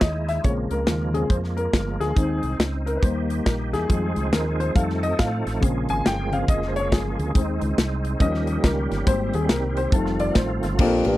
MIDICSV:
0, 0, Header, 1, 6, 480
1, 0, Start_track
1, 0, Key_signature, -4, "major"
1, 0, Tempo, 431034
1, 493, Time_signature, 4, 2, 24, 8
1, 12443, End_track
2, 0, Start_track
2, 0, Title_t, "Grand piano"
2, 0, Program_c, 0, 0
2, 17, Note_on_c, 0, 75, 76
2, 317, Note_on_c, 0, 76, 91
2, 325, Note_off_c, 0, 75, 0
2, 491, Note_on_c, 0, 49, 54
2, 499, Note_on_c, 0, 73, 87
2, 500, Note_off_c, 0, 76, 0
2, 500, Note_on_c, 0, 56, 47
2, 515, Note_on_c, 0, 60, 61
2, 566, Note_off_c, 0, 73, 0
2, 792, Note_on_c, 0, 70, 86
2, 1246, Note_off_c, 0, 49, 0
2, 1256, Note_off_c, 0, 56, 0
2, 1261, Note_off_c, 0, 60, 0
2, 1263, Note_on_c, 0, 49, 46
2, 1272, Note_on_c, 0, 68, 80
2, 1273, Note_on_c, 0, 56, 44
2, 1278, Note_on_c, 0, 60, 50
2, 1288, Note_off_c, 0, 70, 0
2, 1430, Note_off_c, 0, 49, 0
2, 1435, Note_off_c, 0, 56, 0
2, 1438, Note_off_c, 0, 60, 0
2, 1446, Note_on_c, 0, 72, 81
2, 1458, Note_off_c, 0, 68, 0
2, 1514, Note_off_c, 0, 72, 0
2, 1744, Note_on_c, 0, 70, 86
2, 2232, Note_on_c, 0, 68, 98
2, 2245, Note_off_c, 0, 70, 0
2, 2398, Note_on_c, 0, 51, 56
2, 2407, Note_on_c, 0, 56, 46
2, 2412, Note_on_c, 0, 60, 61
2, 2760, Note_off_c, 0, 51, 0
2, 2765, Note_off_c, 0, 56, 0
2, 2768, Note_off_c, 0, 60, 0
2, 2850, Note_off_c, 0, 68, 0
2, 3187, Note_on_c, 0, 70, 82
2, 3310, Note_on_c, 0, 71, 62
2, 3317, Note_off_c, 0, 70, 0
2, 3370, Note_on_c, 0, 51, 50
2, 3373, Note_off_c, 0, 71, 0
2, 3379, Note_on_c, 0, 55, 47
2, 3384, Note_on_c, 0, 72, 79
2, 3386, Note_on_c, 0, 58, 53
2, 3852, Note_on_c, 0, 70, 76
2, 3875, Note_off_c, 0, 72, 0
2, 3920, Note_off_c, 0, 70, 0
2, 4158, Note_on_c, 0, 68, 95
2, 4290, Note_off_c, 0, 51, 0
2, 4294, Note_off_c, 0, 55, 0
2, 4298, Note_off_c, 0, 58, 0
2, 4328, Note_on_c, 0, 51, 54
2, 4338, Note_on_c, 0, 55, 47
2, 4345, Note_on_c, 0, 56, 56
2, 4687, Note_off_c, 0, 51, 0
2, 4692, Note_off_c, 0, 55, 0
2, 4696, Note_off_c, 0, 56, 0
2, 4819, Note_on_c, 0, 70, 85
2, 4838, Note_off_c, 0, 68, 0
2, 5122, Note_on_c, 0, 72, 91
2, 5128, Note_off_c, 0, 70, 0
2, 5284, Note_on_c, 0, 51, 51
2, 5286, Note_on_c, 0, 55, 48
2, 5295, Note_on_c, 0, 77, 95
2, 5298, Note_on_c, 0, 57, 55
2, 5306, Note_off_c, 0, 72, 0
2, 5363, Note_off_c, 0, 77, 0
2, 5601, Note_on_c, 0, 75, 94
2, 5645, Note_off_c, 0, 51, 0
2, 5646, Note_off_c, 0, 55, 0
2, 5652, Note_off_c, 0, 57, 0
2, 5777, Note_on_c, 0, 77, 91
2, 5785, Note_off_c, 0, 75, 0
2, 6225, Note_off_c, 0, 77, 0
2, 6242, Note_on_c, 0, 49, 54
2, 6251, Note_on_c, 0, 56, 48
2, 6255, Note_on_c, 0, 60, 60
2, 6570, Note_on_c, 0, 80, 101
2, 6750, Note_off_c, 0, 80, 0
2, 6754, Note_on_c, 0, 79, 100
2, 6993, Note_off_c, 0, 49, 0
2, 6998, Note_off_c, 0, 56, 0
2, 7000, Note_off_c, 0, 60, 0
2, 7031, Note_on_c, 0, 49, 49
2, 7040, Note_on_c, 0, 56, 44
2, 7045, Note_on_c, 0, 60, 51
2, 7050, Note_on_c, 0, 77, 96
2, 7057, Note_off_c, 0, 79, 0
2, 7197, Note_off_c, 0, 49, 0
2, 7202, Note_off_c, 0, 56, 0
2, 7205, Note_off_c, 0, 60, 0
2, 7226, Note_on_c, 0, 75, 90
2, 7230, Note_off_c, 0, 77, 0
2, 7439, Note_on_c, 0, 72, 65
2, 7455, Note_off_c, 0, 75, 0
2, 7518, Note_off_c, 0, 72, 0
2, 7529, Note_on_c, 0, 73, 103
2, 7710, Note_off_c, 0, 73, 0
2, 7711, Note_on_c, 0, 68, 78
2, 8176, Note_on_c, 0, 51, 58
2, 8184, Note_on_c, 0, 56, 50
2, 8190, Note_on_c, 0, 60, 65
2, 8442, Note_off_c, 0, 68, 0
2, 8532, Note_off_c, 0, 51, 0
2, 8536, Note_off_c, 0, 56, 0
2, 8539, Note_off_c, 0, 60, 0
2, 9140, Note_on_c, 0, 53, 59
2, 9144, Note_on_c, 0, 61, 65
2, 9145, Note_on_c, 0, 75, 101
2, 9146, Note_on_c, 0, 55, 49
2, 9628, Note_on_c, 0, 70, 83
2, 9637, Note_off_c, 0, 75, 0
2, 10055, Note_off_c, 0, 53, 0
2, 10058, Note_off_c, 0, 55, 0
2, 10058, Note_off_c, 0, 61, 0
2, 10091, Note_on_c, 0, 55, 55
2, 10092, Note_on_c, 0, 58, 51
2, 10102, Note_on_c, 0, 60, 67
2, 10106, Note_on_c, 0, 72, 101
2, 10118, Note_off_c, 0, 70, 0
2, 10408, Note_on_c, 0, 68, 90
2, 10413, Note_off_c, 0, 72, 0
2, 10585, Note_on_c, 0, 70, 85
2, 10589, Note_off_c, 0, 68, 0
2, 10862, Note_off_c, 0, 70, 0
2, 10884, Note_on_c, 0, 72, 87
2, 11010, Note_off_c, 0, 55, 0
2, 11011, Note_off_c, 0, 58, 0
2, 11015, Note_off_c, 0, 60, 0
2, 11049, Note_on_c, 0, 55, 53
2, 11053, Note_on_c, 0, 57, 52
2, 11059, Note_on_c, 0, 69, 85
2, 11065, Note_on_c, 0, 63, 64
2, 11067, Note_off_c, 0, 72, 0
2, 11359, Note_on_c, 0, 74, 93
2, 11368, Note_off_c, 0, 69, 0
2, 11540, Note_on_c, 0, 72, 78
2, 11543, Note_off_c, 0, 74, 0
2, 11967, Note_off_c, 0, 55, 0
2, 11969, Note_off_c, 0, 57, 0
2, 11975, Note_off_c, 0, 63, 0
2, 11984, Note_off_c, 0, 72, 0
2, 12022, Note_on_c, 0, 58, 80
2, 12026, Note_on_c, 0, 62, 74
2, 12027, Note_on_c, 0, 46, 68
2, 12029, Note_on_c, 0, 65, 68
2, 12031, Note_on_c, 0, 67, 74
2, 12031, Note_on_c, 0, 69, 66
2, 12088, Note_on_c, 0, 70, 83
2, 12096, Note_off_c, 0, 69, 0
2, 12443, Note_off_c, 0, 46, 0
2, 12443, Note_off_c, 0, 58, 0
2, 12443, Note_off_c, 0, 62, 0
2, 12443, Note_off_c, 0, 65, 0
2, 12443, Note_off_c, 0, 67, 0
2, 12443, Note_off_c, 0, 70, 0
2, 12443, End_track
3, 0, Start_track
3, 0, Title_t, "Tonewheel organ"
3, 0, Program_c, 1, 16
3, 0, Note_on_c, 1, 56, 58
3, 0, Note_on_c, 1, 63, 57
3, 0, Note_on_c, 1, 64, 69
3, 470, Note_off_c, 1, 64, 0
3, 474, Note_off_c, 1, 63, 0
3, 483, Note_on_c, 1, 58, 58
3, 488, Note_on_c, 1, 53, 69
3, 2375, Note_off_c, 1, 56, 0
3, 2390, Note_off_c, 1, 58, 0
3, 2393, Note_off_c, 1, 53, 0
3, 2401, Note_on_c, 1, 63, 59
3, 2403, Note_on_c, 1, 60, 61
3, 3358, Note_on_c, 1, 67, 68
3, 3360, Note_off_c, 1, 60, 0
3, 3364, Note_on_c, 1, 58, 64
3, 4314, Note_on_c, 1, 68, 71
3, 4317, Note_on_c, 1, 60, 57
3, 4319, Note_off_c, 1, 67, 0
3, 4320, Note_on_c, 1, 56, 60
3, 4321, Note_off_c, 1, 58, 0
3, 4326, Note_on_c, 1, 53, 68
3, 5263, Note_off_c, 1, 63, 0
3, 5277, Note_off_c, 1, 68, 0
3, 5280, Note_off_c, 1, 56, 0
3, 5310, Note_on_c, 1, 63, 60
3, 5310, Note_on_c, 1, 69, 70
3, 5316, Note_on_c, 1, 57, 57
3, 6230, Note_off_c, 1, 60, 0
3, 6256, Note_off_c, 1, 63, 0
3, 6256, Note_off_c, 1, 69, 0
3, 6258, Note_on_c, 1, 58, 62
3, 6259, Note_off_c, 1, 57, 0
3, 6260, Note_on_c, 1, 49, 61
3, 6261, Note_on_c, 1, 68, 74
3, 6267, Note_on_c, 1, 56, 66
3, 8137, Note_off_c, 1, 53, 0
3, 8161, Note_off_c, 1, 58, 0
3, 8162, Note_off_c, 1, 49, 0
3, 8162, Note_off_c, 1, 68, 0
3, 8193, Note_on_c, 1, 63, 76
3, 8198, Note_on_c, 1, 60, 61
3, 9116, Note_off_c, 1, 56, 0
3, 9123, Note_on_c, 1, 51, 70
3, 9126, Note_on_c, 1, 55, 59
3, 9127, Note_on_c, 1, 58, 59
3, 9129, Note_on_c, 1, 61, 63
3, 9130, Note_on_c, 1, 67, 74
3, 9137, Note_off_c, 1, 63, 0
3, 9140, Note_off_c, 1, 60, 0
3, 10084, Note_off_c, 1, 58, 0
3, 10085, Note_off_c, 1, 61, 0
3, 10103, Note_on_c, 1, 60, 68
3, 11032, Note_off_c, 1, 55, 0
3, 11034, Note_off_c, 1, 67, 0
3, 11076, Note_on_c, 1, 57, 62
3, 11076, Note_on_c, 1, 65, 78
3, 11078, Note_on_c, 1, 53, 64
3, 11979, Note_off_c, 1, 51, 0
3, 11999, Note_off_c, 1, 60, 0
3, 12016, Note_off_c, 1, 57, 0
3, 12016, Note_off_c, 1, 65, 0
3, 12017, Note_off_c, 1, 53, 0
3, 12443, End_track
4, 0, Start_track
4, 0, Title_t, "Bassoon"
4, 0, Program_c, 2, 70
4, 12035, Note_on_c, 2, 41, 88
4, 12325, Note_on_c, 2, 43, 101
4, 12342, Note_off_c, 2, 41, 0
4, 12443, Note_off_c, 2, 43, 0
4, 12443, End_track
5, 0, Start_track
5, 0, Title_t, "Fingered electric bass"
5, 0, Program_c, 3, 33
5, 19, Note_on_c, 3, 39, 91
5, 425, Note_off_c, 3, 39, 0
5, 494, Note_on_c, 3, 34, 102
5, 749, Note_off_c, 3, 34, 0
5, 786, Note_on_c, 3, 37, 80
5, 942, Note_off_c, 3, 37, 0
5, 968, Note_on_c, 3, 39, 82
5, 1379, Note_off_c, 3, 39, 0
5, 1444, Note_on_c, 3, 41, 89
5, 1857, Note_off_c, 3, 41, 0
5, 1934, Note_on_c, 3, 31, 91
5, 2190, Note_off_c, 3, 31, 0
5, 2226, Note_on_c, 3, 38, 80
5, 2383, Note_off_c, 3, 38, 0
5, 2411, Note_on_c, 3, 39, 103
5, 2668, Note_off_c, 3, 39, 0
5, 2705, Note_on_c, 3, 36, 77
5, 2862, Note_off_c, 3, 36, 0
5, 2886, Note_on_c, 3, 37, 83
5, 3299, Note_off_c, 3, 37, 0
5, 3370, Note_on_c, 3, 39, 94
5, 3781, Note_off_c, 3, 39, 0
5, 3857, Note_on_c, 3, 34, 94
5, 4149, Note_on_c, 3, 40, 82
5, 4166, Note_off_c, 3, 34, 0
5, 4305, Note_off_c, 3, 40, 0
5, 4339, Note_on_c, 3, 41, 108
5, 4594, Note_off_c, 3, 41, 0
5, 4638, Note_on_c, 3, 37, 80
5, 4791, Note_off_c, 3, 37, 0
5, 4810, Note_on_c, 3, 39, 86
5, 5222, Note_off_c, 3, 39, 0
5, 5298, Note_on_c, 3, 41, 102
5, 5707, Note_off_c, 3, 41, 0
5, 5786, Note_on_c, 3, 45, 83
5, 6039, Note_off_c, 3, 45, 0
5, 6082, Note_on_c, 3, 33, 85
5, 6234, Note_off_c, 3, 33, 0
5, 6266, Note_on_c, 3, 34, 94
5, 6519, Note_off_c, 3, 34, 0
5, 6560, Note_on_c, 3, 32, 77
5, 6713, Note_off_c, 3, 32, 0
5, 6745, Note_on_c, 3, 31, 78
5, 7151, Note_off_c, 3, 31, 0
5, 7222, Note_on_c, 3, 29, 87
5, 7711, Note_off_c, 3, 29, 0
5, 7711, Note_on_c, 3, 31, 94
5, 7962, Note_off_c, 3, 31, 0
5, 8009, Note_on_c, 3, 38, 91
5, 8158, Note_off_c, 3, 38, 0
5, 8190, Note_on_c, 3, 39, 94
5, 8441, Note_off_c, 3, 39, 0
5, 8482, Note_on_c, 3, 37, 93
5, 8635, Note_off_c, 3, 37, 0
5, 8663, Note_on_c, 3, 36, 94
5, 9070, Note_off_c, 3, 36, 0
5, 9136, Note_on_c, 3, 39, 99
5, 9546, Note_off_c, 3, 39, 0
5, 9618, Note_on_c, 3, 37, 84
5, 9875, Note_off_c, 3, 37, 0
5, 9924, Note_on_c, 3, 31, 82
5, 10075, Note_off_c, 3, 31, 0
5, 10101, Note_on_c, 3, 32, 116
5, 10356, Note_off_c, 3, 32, 0
5, 10401, Note_on_c, 3, 39, 92
5, 10553, Note_off_c, 3, 39, 0
5, 10575, Note_on_c, 3, 36, 83
5, 10984, Note_off_c, 3, 36, 0
5, 11048, Note_on_c, 3, 29, 98
5, 11460, Note_off_c, 3, 29, 0
5, 11533, Note_on_c, 3, 33, 95
5, 11790, Note_off_c, 3, 33, 0
5, 11836, Note_on_c, 3, 31, 91
5, 11989, Note_off_c, 3, 31, 0
5, 12020, Note_on_c, 3, 34, 110
5, 12273, Note_off_c, 3, 34, 0
5, 12318, Note_on_c, 3, 33, 100
5, 12443, Note_off_c, 3, 33, 0
5, 12443, End_track
6, 0, Start_track
6, 0, Title_t, "Drums"
6, 12, Note_on_c, 9, 38, 105
6, 16, Note_on_c, 9, 36, 84
6, 18, Note_on_c, 9, 42, 72
6, 123, Note_off_c, 9, 38, 0
6, 128, Note_off_c, 9, 36, 0
6, 130, Note_off_c, 9, 42, 0
6, 318, Note_on_c, 9, 42, 66
6, 320, Note_on_c, 9, 38, 33
6, 430, Note_off_c, 9, 42, 0
6, 432, Note_off_c, 9, 38, 0
6, 491, Note_on_c, 9, 42, 83
6, 495, Note_on_c, 9, 36, 104
6, 602, Note_off_c, 9, 42, 0
6, 607, Note_off_c, 9, 36, 0
6, 787, Note_on_c, 9, 42, 67
6, 898, Note_off_c, 9, 42, 0
6, 967, Note_on_c, 9, 38, 110
6, 969, Note_on_c, 9, 42, 79
6, 1079, Note_off_c, 9, 38, 0
6, 1081, Note_off_c, 9, 42, 0
6, 1277, Note_on_c, 9, 42, 74
6, 1389, Note_off_c, 9, 42, 0
6, 1447, Note_on_c, 9, 36, 103
6, 1453, Note_on_c, 9, 42, 79
6, 1559, Note_off_c, 9, 36, 0
6, 1564, Note_off_c, 9, 42, 0
6, 1601, Note_on_c, 9, 38, 28
6, 1713, Note_off_c, 9, 38, 0
6, 1754, Note_on_c, 9, 42, 68
6, 1865, Note_off_c, 9, 42, 0
6, 1932, Note_on_c, 9, 36, 86
6, 1932, Note_on_c, 9, 38, 110
6, 1938, Note_on_c, 9, 42, 77
6, 2043, Note_off_c, 9, 36, 0
6, 2043, Note_off_c, 9, 38, 0
6, 2049, Note_off_c, 9, 42, 0
6, 2239, Note_on_c, 9, 42, 66
6, 2241, Note_on_c, 9, 38, 34
6, 2350, Note_off_c, 9, 42, 0
6, 2352, Note_off_c, 9, 38, 0
6, 2411, Note_on_c, 9, 36, 100
6, 2411, Note_on_c, 9, 42, 95
6, 2522, Note_off_c, 9, 42, 0
6, 2523, Note_off_c, 9, 36, 0
6, 2704, Note_on_c, 9, 42, 63
6, 2815, Note_off_c, 9, 42, 0
6, 2893, Note_on_c, 9, 38, 119
6, 2895, Note_on_c, 9, 42, 76
6, 3005, Note_off_c, 9, 38, 0
6, 3007, Note_off_c, 9, 42, 0
6, 3198, Note_on_c, 9, 42, 69
6, 3309, Note_off_c, 9, 42, 0
6, 3370, Note_on_c, 9, 36, 102
6, 3380, Note_on_c, 9, 42, 84
6, 3481, Note_off_c, 9, 36, 0
6, 3491, Note_off_c, 9, 42, 0
6, 3677, Note_on_c, 9, 42, 66
6, 3788, Note_off_c, 9, 42, 0
6, 3855, Note_on_c, 9, 38, 113
6, 3857, Note_on_c, 9, 36, 85
6, 3861, Note_on_c, 9, 42, 78
6, 3966, Note_off_c, 9, 38, 0
6, 3968, Note_off_c, 9, 36, 0
6, 3972, Note_off_c, 9, 42, 0
6, 4161, Note_on_c, 9, 42, 68
6, 4164, Note_on_c, 9, 38, 34
6, 4273, Note_off_c, 9, 42, 0
6, 4275, Note_off_c, 9, 38, 0
6, 4340, Note_on_c, 9, 36, 103
6, 4341, Note_on_c, 9, 42, 97
6, 4451, Note_off_c, 9, 36, 0
6, 4452, Note_off_c, 9, 42, 0
6, 4635, Note_on_c, 9, 42, 67
6, 4747, Note_off_c, 9, 42, 0
6, 4819, Note_on_c, 9, 38, 115
6, 4821, Note_on_c, 9, 42, 78
6, 4930, Note_off_c, 9, 38, 0
6, 4932, Note_off_c, 9, 42, 0
6, 5126, Note_on_c, 9, 42, 72
6, 5237, Note_off_c, 9, 42, 0
6, 5296, Note_on_c, 9, 36, 104
6, 5305, Note_on_c, 9, 42, 83
6, 5407, Note_off_c, 9, 36, 0
6, 5417, Note_off_c, 9, 42, 0
6, 5452, Note_on_c, 9, 38, 30
6, 5563, Note_off_c, 9, 38, 0
6, 5604, Note_on_c, 9, 42, 65
6, 5715, Note_off_c, 9, 42, 0
6, 5780, Note_on_c, 9, 38, 121
6, 5783, Note_on_c, 9, 36, 87
6, 5786, Note_on_c, 9, 42, 75
6, 5891, Note_off_c, 9, 38, 0
6, 5894, Note_off_c, 9, 36, 0
6, 5898, Note_off_c, 9, 42, 0
6, 6089, Note_on_c, 9, 42, 69
6, 6091, Note_on_c, 9, 38, 31
6, 6200, Note_off_c, 9, 42, 0
6, 6202, Note_off_c, 9, 38, 0
6, 6265, Note_on_c, 9, 36, 110
6, 6268, Note_on_c, 9, 42, 95
6, 6376, Note_off_c, 9, 36, 0
6, 6379, Note_off_c, 9, 42, 0
6, 6556, Note_on_c, 9, 42, 68
6, 6667, Note_off_c, 9, 42, 0
6, 6746, Note_on_c, 9, 38, 119
6, 6748, Note_on_c, 9, 42, 77
6, 6857, Note_off_c, 9, 38, 0
6, 6859, Note_off_c, 9, 42, 0
6, 7045, Note_on_c, 9, 42, 72
6, 7156, Note_off_c, 9, 42, 0
6, 7220, Note_on_c, 9, 36, 99
6, 7228, Note_on_c, 9, 42, 87
6, 7332, Note_off_c, 9, 36, 0
6, 7340, Note_off_c, 9, 42, 0
6, 7373, Note_on_c, 9, 38, 31
6, 7484, Note_off_c, 9, 38, 0
6, 7529, Note_on_c, 9, 42, 66
6, 7640, Note_off_c, 9, 42, 0
6, 7707, Note_on_c, 9, 36, 88
6, 7711, Note_on_c, 9, 38, 118
6, 7717, Note_on_c, 9, 42, 84
6, 7818, Note_off_c, 9, 36, 0
6, 7822, Note_off_c, 9, 38, 0
6, 7828, Note_off_c, 9, 42, 0
6, 8012, Note_on_c, 9, 42, 68
6, 8124, Note_off_c, 9, 42, 0
6, 8187, Note_on_c, 9, 36, 101
6, 8189, Note_on_c, 9, 42, 89
6, 8298, Note_off_c, 9, 36, 0
6, 8300, Note_off_c, 9, 42, 0
6, 8479, Note_on_c, 9, 42, 68
6, 8591, Note_off_c, 9, 42, 0
6, 8666, Note_on_c, 9, 38, 120
6, 8668, Note_on_c, 9, 42, 82
6, 8777, Note_off_c, 9, 38, 0
6, 8779, Note_off_c, 9, 42, 0
6, 8961, Note_on_c, 9, 42, 73
6, 9072, Note_off_c, 9, 42, 0
6, 9134, Note_on_c, 9, 36, 108
6, 9141, Note_on_c, 9, 42, 85
6, 9246, Note_off_c, 9, 36, 0
6, 9252, Note_off_c, 9, 42, 0
6, 9290, Note_on_c, 9, 38, 29
6, 9401, Note_off_c, 9, 38, 0
6, 9435, Note_on_c, 9, 42, 70
6, 9547, Note_off_c, 9, 42, 0
6, 9620, Note_on_c, 9, 36, 85
6, 9620, Note_on_c, 9, 38, 123
6, 9626, Note_on_c, 9, 42, 76
6, 9731, Note_off_c, 9, 36, 0
6, 9731, Note_off_c, 9, 38, 0
6, 9737, Note_off_c, 9, 42, 0
6, 9928, Note_on_c, 9, 42, 72
6, 9930, Note_on_c, 9, 38, 34
6, 10040, Note_off_c, 9, 42, 0
6, 10042, Note_off_c, 9, 38, 0
6, 10099, Note_on_c, 9, 36, 110
6, 10100, Note_on_c, 9, 42, 100
6, 10210, Note_off_c, 9, 36, 0
6, 10211, Note_off_c, 9, 42, 0
6, 10396, Note_on_c, 9, 42, 72
6, 10507, Note_off_c, 9, 42, 0
6, 10571, Note_on_c, 9, 38, 124
6, 10573, Note_on_c, 9, 42, 81
6, 10682, Note_off_c, 9, 38, 0
6, 10684, Note_off_c, 9, 42, 0
6, 10877, Note_on_c, 9, 42, 78
6, 10989, Note_off_c, 9, 42, 0
6, 11049, Note_on_c, 9, 36, 117
6, 11057, Note_on_c, 9, 42, 88
6, 11161, Note_off_c, 9, 36, 0
6, 11168, Note_off_c, 9, 42, 0
6, 11203, Note_on_c, 9, 38, 31
6, 11314, Note_off_c, 9, 38, 0
6, 11353, Note_on_c, 9, 42, 67
6, 11465, Note_off_c, 9, 42, 0
6, 11528, Note_on_c, 9, 38, 122
6, 11533, Note_on_c, 9, 36, 91
6, 11534, Note_on_c, 9, 42, 82
6, 11639, Note_off_c, 9, 38, 0
6, 11644, Note_off_c, 9, 36, 0
6, 11646, Note_off_c, 9, 42, 0
6, 11836, Note_on_c, 9, 42, 70
6, 11839, Note_on_c, 9, 38, 33
6, 11948, Note_off_c, 9, 42, 0
6, 11950, Note_off_c, 9, 38, 0
6, 12010, Note_on_c, 9, 49, 109
6, 12016, Note_on_c, 9, 36, 117
6, 12122, Note_off_c, 9, 49, 0
6, 12128, Note_off_c, 9, 36, 0
6, 12302, Note_on_c, 9, 51, 62
6, 12413, Note_off_c, 9, 51, 0
6, 12443, End_track
0, 0, End_of_file